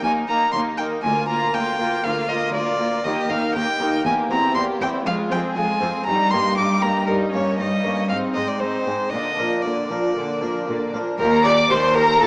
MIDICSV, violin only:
0, 0, Header, 1, 2, 480
1, 0, Start_track
1, 0, Key_signature, -3, "major"
1, 0, Tempo, 503356
1, 988, Time_signature, 4, 2, 24, 8
1, 7713, Tempo, 513699
1, 11619, End_track
2, 0, Start_track
2, 0, Title_t, "Violin"
2, 0, Program_c, 0, 40
2, 33, Note_on_c, 0, 80, 74
2, 109, Note_off_c, 0, 80, 0
2, 270, Note_on_c, 0, 82, 70
2, 493, Note_off_c, 0, 82, 0
2, 498, Note_on_c, 0, 84, 67
2, 575, Note_off_c, 0, 84, 0
2, 739, Note_on_c, 0, 79, 71
2, 816, Note_off_c, 0, 79, 0
2, 976, Note_on_c, 0, 80, 66
2, 1216, Note_off_c, 0, 80, 0
2, 1223, Note_on_c, 0, 82, 76
2, 1466, Note_on_c, 0, 79, 73
2, 1481, Note_off_c, 0, 82, 0
2, 1939, Note_on_c, 0, 77, 67
2, 1953, Note_off_c, 0, 79, 0
2, 2183, Note_on_c, 0, 75, 75
2, 2197, Note_off_c, 0, 77, 0
2, 2418, Note_off_c, 0, 75, 0
2, 2424, Note_on_c, 0, 74, 77
2, 2902, Note_on_c, 0, 75, 71
2, 2916, Note_off_c, 0, 74, 0
2, 3144, Note_on_c, 0, 77, 76
2, 3158, Note_off_c, 0, 75, 0
2, 3378, Note_off_c, 0, 77, 0
2, 3384, Note_on_c, 0, 79, 83
2, 3855, Note_off_c, 0, 79, 0
2, 3865, Note_on_c, 0, 80, 74
2, 3941, Note_off_c, 0, 80, 0
2, 4114, Note_on_c, 0, 82, 78
2, 4333, Note_off_c, 0, 82, 0
2, 4338, Note_on_c, 0, 84, 79
2, 4415, Note_off_c, 0, 84, 0
2, 4591, Note_on_c, 0, 79, 71
2, 4667, Note_off_c, 0, 79, 0
2, 4827, Note_on_c, 0, 77, 73
2, 4903, Note_off_c, 0, 77, 0
2, 5069, Note_on_c, 0, 79, 66
2, 5146, Note_off_c, 0, 79, 0
2, 5305, Note_on_c, 0, 80, 74
2, 5775, Note_off_c, 0, 80, 0
2, 5781, Note_on_c, 0, 82, 76
2, 6013, Note_on_c, 0, 84, 81
2, 6027, Note_off_c, 0, 82, 0
2, 6263, Note_off_c, 0, 84, 0
2, 6268, Note_on_c, 0, 86, 75
2, 6500, Note_on_c, 0, 82, 68
2, 6514, Note_off_c, 0, 86, 0
2, 6735, Note_off_c, 0, 82, 0
2, 6740, Note_on_c, 0, 70, 63
2, 6817, Note_off_c, 0, 70, 0
2, 6993, Note_on_c, 0, 73, 63
2, 7228, Note_off_c, 0, 73, 0
2, 7239, Note_on_c, 0, 75, 65
2, 7709, Note_off_c, 0, 75, 0
2, 7715, Note_on_c, 0, 77, 65
2, 7790, Note_off_c, 0, 77, 0
2, 7949, Note_on_c, 0, 75, 62
2, 8079, Note_on_c, 0, 74, 54
2, 8093, Note_off_c, 0, 75, 0
2, 8190, Note_on_c, 0, 72, 62
2, 8204, Note_off_c, 0, 74, 0
2, 8660, Note_on_c, 0, 75, 72
2, 8674, Note_off_c, 0, 72, 0
2, 9147, Note_on_c, 0, 74, 57
2, 9161, Note_off_c, 0, 75, 0
2, 10362, Note_off_c, 0, 74, 0
2, 10608, Note_on_c, 0, 70, 83
2, 10830, Note_off_c, 0, 70, 0
2, 10847, Note_on_c, 0, 74, 81
2, 10922, Note_off_c, 0, 74, 0
2, 11085, Note_on_c, 0, 72, 74
2, 11320, Note_on_c, 0, 70, 85
2, 11334, Note_off_c, 0, 72, 0
2, 11556, Note_off_c, 0, 70, 0
2, 11564, Note_on_c, 0, 69, 90
2, 11619, Note_off_c, 0, 69, 0
2, 11619, End_track
0, 0, End_of_file